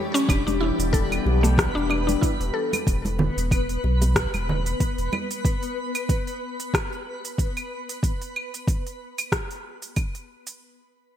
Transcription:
Already playing: E3 G3 A3 D4 G4 C#5 B5
0.14 C#4, open hi-hat, shaker
0.28 E1 E3 G3 B3 D4 G4 B4, kick, open hi-hat, claves, shaker
0.47 D4, open hi-hat, high conga, shaker
0.61 E4, high bongo
0.79 E1, open hi-hat, shaker
0.93 A4, kick, open hi-hat, shaker
1.12 open hi-hat, claves, shaker
1.25 B1, high bongo
1.43 A3, open hi-hat, high bongo, shaker
1.58 kick, cross-stick, open hi-hat, shaker
1.75 E1 D4, shaker
1.90 D4, claves
2.07 D4, open hi-hat, high conga, shaker
2.21 E4, kick, open hi-hat, shaker
2.40 E1, open hi-hat, shaker
2.54 A4
2.73 open hi-hat, high bongo, high conga, claves, shaker
2.87 E1, kick, open hi-hat, shaker
3.05 open hi-hat, high conga, shaker
3.19 high bongo, low conga
3.37 E1, open hi-hat, shaker
3.51 kick, open hi-hat, claves, shaker
3.69 open hi-hat, shaker
3.84 B1, high bongo
4.01 open hi-hat, high bongo, high conga, shaker
4.16 kick, cross-stick, open hi-hat, shaker
4.33 E1, open hi-hat, high conga, claves, shaker
4.49 low conga
4.66 open hi-hat, shaker
4.80 kick, open hi-hat, shaker
4.98 E1, open hi-hat, shaker
5.12 high bongo, high conga, claves
5.31 open hi-hat, shaker
5.45 kick, open hi-hat, shaker
5.63 open hi-hat, shaker
5.95 open hi-hat, claves, shaker
6.09 kick, open hi-hat, shaker
6.27 open hi-hat, shaker
6.60 open hi-hat, shaker
6.74 kick, cross-stick, open hi-hat, claves, shaker
6.93 shaker
7.25 open hi-hat, shaker
7.38 kick, open hi-hat, shaker
7.57 open hi-hat, claves, shaker
7.89 open hi-hat, shaker
8.03 kick, open hi-hat, shaker
8.22 open hi-hat, shaker
8.36 claves
8.54 open hi-hat, shaker
8.68 kick, open hi-hat, shaker
8.87 open hi-hat, shaker
9.18 open hi-hat, claves, shaker
9.32 kick, cross-stick, open hi-hat, shaker
9.51 open hi-hat, shaker
9.82 open hi-hat, shaker
9.96 kick, open hi-hat, claves, shaker
10.15 open hi-hat, shaker
10.47 open hi-hat, shaker

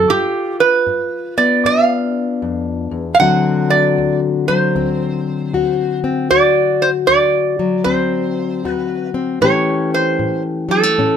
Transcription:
Already playing: A4
0.10 G2 F4 G4
0.60 B4
0.86 G2
1.38 B3 D5
1.65 G2 D4 F5
2.42 F2
2.91 E2
3.15 F5
3.19 D2 D3 F#3 C4 F#4 F#5
3.70 D5
3.98 D2
4.48 F#3 C5
4.75 D2 C4
5.53 D2 F#4
6.04 C4
6.31 D2 F#4 D5
6.82 C5
7.07 D2 D5
7.59 F#3
7.84 D2 C4 C5
8.65 D2 F#4 B4
9.14 C4
9.41 A2 E3 A3 C#4 G4 C#5
9.94 C5
10.19 A2
10.69 F#3 A4
10.83 A3
10.98 A2 C#4

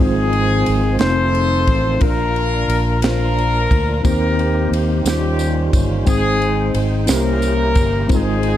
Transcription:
Already playing: G#2 G#3 C4 D#4
0.00 G#1 D#3 F3 G#3 C4 D#4 F4 G#4 C5
0.06 F4
0.33 ride
0.66 G#1, ride
0.98 F1 D#3 F3 A3 C4 D#4 F4 A4 C5, snare, ride
1.02 G#3
1.07 A3 C5
1.35 ride
1.67 A1, kick, ride
2.00 A#1 A#2 A#3 D4 F4 A#4, kick, ride
2.36 ride
2.68 A#1, ride
3.02 D4 F4 A#4 C5, snare, ride
3.38 ride
3.71 D2, kick, ride
4.03 D#2 D#3 A#3 C4 D#4 G4 A#4 C5, kick, ride, tambourine
4.39 ride
4.71 D#2, ride
5.05 D#2 D#3 G3 A#3 C#4 D#4 F4 G4 C5, snare, ride, tambourine
5.39 ride, tambourine
5.73 G1, kick, ride, tambourine
6.05 G#1 G#2 G#3 C4 D#4 G#4 C5 G5, kick, ride, tambourine
6.09 C4
6.42 ride
6.74 G#1, ride
7.06 C2 C3 A#3 C#4 E4 G4 C5, snare, ride, tambourine
7.11 C#4 E4 A#4
7.42 ride, tambourine
7.75 G1, kick, ride, tambourine
8.08 G#1 G#2 G3 C4 D#4 F4 C5, kick, ride
8.12 G#3 C4 D#4 F4 G#4 C5, tambourine
8.43 ride

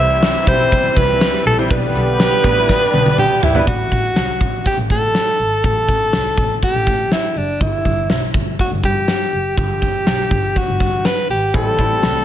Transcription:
Already playing: C3 E3 G3 C4 E4 C5
0.00 C2 E5
0.10 closed hi-hat
0.23 snare, tambourine
0.35 closed hi-hat
0.47 B1 G3 C4 E4 C5 E5, kick, closed hi-hat
0.60 closed hi-hat
0.72 kick, closed hi-hat
0.84 closed hi-hat
0.96 C2 B4, kick, closed hi-hat
1.09 closed hi-hat
1.21 snare, tambourine
1.34 closed hi-hat
1.46 A#1 A4, closed hi-hat
1.58 G3 C4 E4 C5, closed hi-hat
1.70 B1 D3 G3 B3 D4 G4 B4, kick, closed hi-hat
1.83 closed hi-hat
1.95 B1, closed hi-hat
2.07 closed hi-hat
2.20 G4, snare, tambourine
2.32 closed hi-hat
2.44 A1 G3 B3 D4 B4, kick, closed hi-hat
2.56 E4, closed hi-hat
2.69 D4, kick, snare
2.94 B1, high tom
3.06 D4, high tom
3.18 G4, mid tom
3.43 G#1 E4, floor tom
3.54 G3 B3 D4 B4, floor tom
3.67 A1 F#4, kick, closed hi-hat
3.92 A1, kick, closed hi-hat
4.16 C2, snare, closed hi-hat
4.41 A1, kick, closed hi-hat
4.66 G4, kick, closed hi-hat
4.78 A1
4.90 A2 A4, kick, closed hi-hat
5.15 snare, closed hi-hat
5.39 G#1, closed hi-hat
5.64 A1 A4, kick, closed hi-hat
5.88 A1, kick, closed hi-hat
6.13 C2, snare, closed hi-hat
6.37 A1, kick, closed hi-hat
6.62 G4, kick, closed hi-hat
6.75 A1
6.87 A2, kick, closed hi-hat
7.12 E4, snare, closed hi-hat
7.36 F#1 D4, closed hi-hat
7.61 G1 E4, kick, closed hi-hat
7.85 G1, kick, closed hi-hat
8.10 B1, snare, closed hi-hat
8.34 G1, kick, closed hi-hat
8.59 F#4, kick, closed hi-hat
8.71 G1
8.83 G2 G4, kick, closed hi-hat
9.08 snare, closed hi-hat
9.33 F#1, closed hi-hat
9.57 G1 G4, kick, closed hi-hat
9.82 G1, kick, closed hi-hat
10.07 B1, snare, closed hi-hat
10.31 G1, kick, closed hi-hat
10.56 F#4, kick, closed hi-hat
10.68 G1
10.80 G2, kick, closed hi-hat
11.05 B4, snare, closed hi-hat
11.30 G#1 G4, open hi-hat
11.53 A1 E3 G3 A3 C4 E4 G4 A4, kick, closed hi-hat
11.78 A1 G3 C4 E4 A4, kick, closed hi-hat
12.03 C2, snare, closed hi-hat

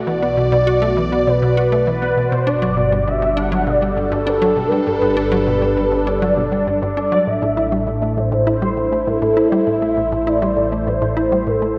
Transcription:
Already playing: B2 F#4 D5
0.07 B1 E3 D5
0.22 B3
0.37 B2
0.52 B2
0.67 F#4
0.82 A3
0.97 E3
1.12 B3
1.27 B2 B4
1.42 B2
1.57 F#4
1.72 A3
1.87 E3 B4
2.02 B3
2.17 B2
2.28 C5
2.32 B2
2.47 G1 G3 D4 D5
2.62 F#3
2.77 B2
2.85 D4
2.92 G3
3.07 G2 E5
3.15 A4
3.22 G2
3.37 D4 F#5
3.52 F#3
3.67 B2 D5
3.82 G3
3.97 G2
4.12 G2
4.27 D4 A4
4.42 F#3
4.57 B2
4.68 B4
4.72 G3
4.87 G1 G2 B4
5.02 G2
5.17 D4
5.32 F#3
5.47 B2
5.62 G3
5.77 G2
5.92 G2
6.07 D4 D5
6.22 F#3
6.37 B2
6.52 G3
6.67 G2
6.82 G2
6.97 D4 D5
7.12 F#3
7.27 A1 A2 A3 E5
7.42 A2
7.57 E4
7.72 G3
7.87 A2 E4
8.02 A3
8.17 A2 C5
8.32 A2
8.44 E4 C5
8.62 G3
8.77 A2
8.92 A3
9.07 A2 A4
9.22 A2
9.37 E4
9.48 E5
9.52 G3
9.67 A1 A2
9.82 A3
9.97 A2
10.12 A2
10.27 E4 D5
10.42 G3
10.57 A2
10.72 A3
10.87 A2 C5
11.02 A2
11.17 E4
11.32 G3
11.47 A2 A4
11.62 A3

